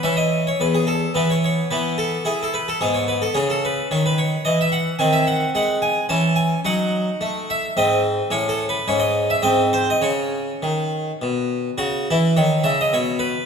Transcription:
<<
  \new Staff \with { instrumentName = "Harpsichord" } { \time 3/4 \key e \major \tempo 4 = 108 << { e''16 dis''8 cis''16 b'16 gis'16 a'8 b'16 cis''16 cis''8 | b'8 a'8 gis'16 a'16 b'16 a'16 gis'16 cis''16 b'16 a'16 | gis'16 a'16 b'8 cis''16 b'16 cis''8 dis''16 e''16 fis''8 | \key cis \minor gis''16 e''16 fis''8 fis''8 gis''8 a''8 gis''8 |
fis''4. e''8 dis''8 r8 | \tuplet 3/2 { cis''8 a'8 b'8 } cis''16 dis''8 e''16 dis''8 bis'16 dis''16 | cis''2 r4 | fis'8 e'8 cis''8 e''16 dis''16 cis''8 b'8 | } \\ { cis'2 b4 | b2 b4 | cis'2. | bis2 cis'4 |
dis'2 bis4 | cis'4 cis'4 bis4 | cis'2. | r2. | } >> }
  \new Staff \with { instrumentName = "Harpsichord" } { \clef bass \time 3/4 \key e \major e4 e,4 e4 | e4 e'4 gis,4 | cis4 dis4 e4 | \key cis \minor dis4 gis4 e4 |
fis4 a4 gis,4 | a,4 gis,4 gis,4 | cis4 dis4 b,4 | cis8 e8 dis8 cis8 b,4 | }
>>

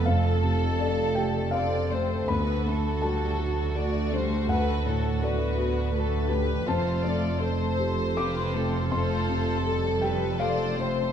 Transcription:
<<
  \new Staff \with { instrumentName = "Violin section" } { \time 3/4 \key f \lydian \tempo 4 = 81 a'2. | fis'2.~ | fis'2 b'4 | a'4 c''2 |
c''4 a'8 b'8 c''4 | }
  \new Staff \with { instrumentName = "Violin section" } { \time 3/4 \key f \lydian a'2 d''8 c''8 | b'8 a'4. d''8 c''8 | b'8 a'8 b'4 a'8 b'8 | c''8 d''8 c''4 b'8 a'8~ |
a'2 d''8 c''8 | }
  \new Staff \with { instrumentName = "Felt piano" } { \time 3/4 \key f \lydian f''4 d''8 g''8 f''4 | b''4 a''2 | fis''4 d''8 r4. | a''2 d'''4 |
c'''4. g''8 f''4 | }
  \new Staff \with { instrumentName = "Felt piano" } { \time 3/4 \key f \lydian <f, a>8 c8 a'8 g'8 a'8 a8 | d,8 a8 a'8 fis'8 a'8 a8 | d,8 a,8 a'8 fis'8 a'8 a8 | f,8 a8 a'8 g'8 a'8 a8 |
f,8 c8 a'8 g'8 a'8 a8 | }
  \new Staff \with { instrumentName = "Viola section" } { \time 3/4 \key f \lydian << { a'2 a'8 a'8~ | a'4 fis'4 fis'8 g8 | a'8 a'8 fis'4 fis'8 g'8 | f'4 a'4 f'4 |
f'4 a'4 a'4 | } \\ { a4 a4 c'4 | b8 a8 g8 fis8 a4~ | a4 b4 a4 | a2 c'8 c'8 |
a4 g4 a8 c'8 | } >> }
  \new Staff \with { instrumentName = "Cello section" } { \clef bass \time 3/4 \key f \lydian f,2. | d,2.~ | d,2. | f,2.~ |
f,2. | }
  \new Staff \with { instrumentName = "Double bass section" } { \clef bass \time 3/4 \key f \lydian f,,2. | d,2.~ | d,2. | f,,2.~ |
f,,2. | }
>>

